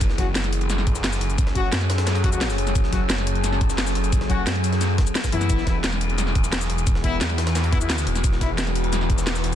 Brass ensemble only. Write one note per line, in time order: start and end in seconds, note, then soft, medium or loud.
0.18 0.27 F#3 medium
0.18 0.27 C#4 medium
0.18 0.27 F#4 medium
1.55 1.69 F#3 loud
1.55 1.69 C#4 medium
1.55 1.69 F#4 loud
2.24 2.31 F#3 loud
2.24 2.31 C#4 medium
2.24 2.31 F#4 loud
2.33 2.47 F#3 medium
2.33 2.47 C#4 medium
2.33 2.47 F#4 medium
2.93 3.01 F#3 medium
2.93 3.01 C#4 medium
2.93 3.01 F#4 medium
4.30 4.44 F#3 loud
4.30 4.44 C#4 medium
4.30 4.44 F#4 loud
5.33 5.65 E3 loud
5.33 5.65 B3 medium
5.33 5.65 E4 loud
5.67 5.76 E3 medium
5.67 5.76 B3 medium
5.67 5.76 E4 medium
7.04 7.18 E3 loud
7.04 7.18 B3 medium
7.04 7.18 E4 loud
7.73 7.80 E3 loud
7.73 7.80 B3 medium
7.73 7.80 E4 loud
7.81 7.95 E3 medium
7.81 7.95 B3 medium
7.81 7.95 E4 medium
8.41 8.50 E3 medium
8.41 8.50 B3 medium
8.41 8.50 E4 medium